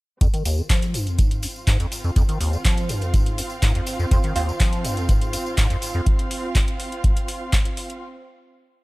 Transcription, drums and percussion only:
0.21 kick loud
0.21 closed hi-hat medium
0.21 tambourine soft
0.33 closed hi-hat medium
0.33 tambourine soft
0.45 open hi-hat loud
0.45 tambourine medium
0.58 tambourine soft
0.69 kick loud
0.69 clap loud
0.69 closed hi-hat medium
0.69 tambourine soft
0.82 closed hi-hat medium
0.82 tambourine soft
0.94 open hi-hat medium
0.94 tambourine medium
1.07 closed hi-hat soft
1.07 tambourine soft
1.18 kick loud
1.18 closed hi-hat medium
1.18 tambourine soft
1.31 closed hi-hat medium
1.31 tambourine soft
1.42 open hi-hat loud
1.42 tambourine medium
1.56 tambourine soft
1.67 kick loud
1.67 clap loud
1.67 closed hi-hat medium
1.67 tambourine soft
1.80 closed hi-hat medium
1.80 tambourine soft
1.92 open hi-hat medium
1.92 tambourine loud
2.04 tambourine soft
2.16 kick loud
2.16 closed hi-hat medium
2.16 tambourine soft
2.29 closed hi-hat medium
2.29 tambourine soft
2.41 open hi-hat loud
2.41 tambourine medium
2.53 tambourine soft
2.65 kick loud
2.65 clap loud
2.65 closed hi-hat medium
2.65 tambourine medium
2.77 closed hi-hat medium
2.77 tambourine soft
2.89 open hi-hat medium
2.89 tambourine medium
3.01 closed hi-hat soft
3.01 tambourine soft
3.14 kick loud
3.14 closed hi-hat medium
3.14 tambourine medium
3.26 closed hi-hat medium
3.26 tambourine soft
3.38 open hi-hat loud
3.38 tambourine medium
3.50 tambourine soft
3.62 kick loud
3.62 clap loud
3.62 closed hi-hat medium
3.62 tambourine medium
3.75 closed hi-hat medium
3.75 tambourine soft
3.86 open hi-hat medium
3.86 tambourine medium
3.99 tambourine soft
4.11 kick loud
4.11 closed hi-hat medium
4.11 tambourine medium
4.23 closed hi-hat soft
4.23 tambourine soft
4.36 open hi-hat loud
4.36 tambourine loud
4.49 tambourine soft
4.60 kick loud
4.60 clap loud
4.60 closed hi-hat medium
4.60 tambourine soft
4.73 closed hi-hat medium
4.73 tambourine soft
4.84 open hi-hat loud
4.84 tambourine medium
4.97 closed hi-hat soft
4.97 tambourine soft
5.09 kick loud
5.09 closed hi-hat medium
5.09 tambourine medium
5.21 closed hi-hat soft
5.21 tambourine soft
5.33 open hi-hat loud
5.33 tambourine loud
5.46 tambourine soft
5.58 kick loud
5.58 clap loud
5.58 closed hi-hat medium
5.58 tambourine medium
5.70 closed hi-hat medium
5.70 tambourine soft
5.82 open hi-hat loud
5.82 tambourine loud
5.94 tambourine soft
6.06 kick loud
6.06 closed hi-hat medium
6.19 closed hi-hat soft
6.31 open hi-hat loud
6.55 kick loud
6.55 clap loud
6.55 closed hi-hat medium
6.68 closed hi-hat soft
6.80 open hi-hat medium
6.92 closed hi-hat soft
7.04 kick loud
7.04 closed hi-hat medium
7.17 closed hi-hat medium
7.28 open hi-hat loud
7.53 kick loud
7.53 clap loud
7.53 closed hi-hat medium
7.65 closed hi-hat medium
7.77 open hi-hat medium
7.90 closed hi-hat soft

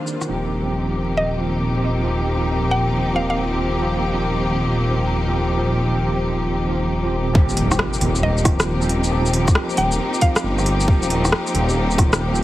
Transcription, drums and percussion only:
0.07 shaker soft
0.21 cross-stick soft
0.21 shaker soft
7.35 kick loud
7.49 shaker soft
7.57 open hi-hat medium
7.71 cross-stick medium
7.71 shaker medium
7.79 cross-stick loud
7.94 shaker soft
8.01 open hi-hat medium
8.16 shaker medium
8.38 shaker soft
8.45 kick loud
8.45 cross-stick medium
8.45 open hi-hat medium
8.60 cross-stick loud
8.60 shaker medium
8.82 shaker soft
8.89 open hi-hat medium
9.04 shaker medium
9.26 shaker soft
9.33 open hi-hat medium
9.48 kick loud
9.48 cross-stick medium
9.48 shaker medium
9.55 cross-stick loud
9.70 shaker soft
9.77 open hi-hat medium
9.92 shaker medium
10.14 shaker soft
10.21 kick medium
10.21 open hi-hat medium
10.36 cross-stick loud
10.36 shaker medium
10.58 cross-stick soft
10.58 shaker soft
10.66 open hi-hat medium
10.80 shaker medium
10.88 kick loud
11.03 shaker soft
11.10 open hi-hat medium
11.25 cross-stick medium
11.25 shaker medium
11.32 cross-stick loud
11.47 shaker soft
11.55 open hi-hat medium
11.69 shaker medium
11.91 shaker soft
11.98 kick loud
11.98 cross-stick medium
11.98 open hi-hat medium
12.13 cross-stick loud
12.13 shaker medium
12.35 shaker soft

